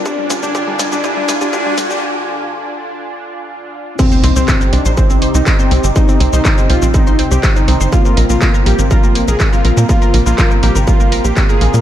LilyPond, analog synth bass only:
\new Staff \with { instrumentName = "Analog synth bass" } { \clef bass \time 4/4 \key c \minor \tempo 4 = 122 r8 d,16 d,16 r8 d,16 c,16 r8 d,16 d,16 r8 d,16 d,16 | r1 | r8 c,16 c,16 r8 c,16 bes,,8. c,16 c,16 r8 c,16 g,,16 | r8 c,16 c,16 r8 c,16 bes,,8. c,16 c,16 r8 c,16 g,,16 |
r8 bes,,16 bes,,16 r8 bes,,16 aes,,8. bes,,16 bes,,16 r8 bes,,16 bes,16 | r8 bes,,16 bes,,16 r8 bes,,16 aes,,8. bes,,16 bes,,16 r8 bes,,16 bes,16 | }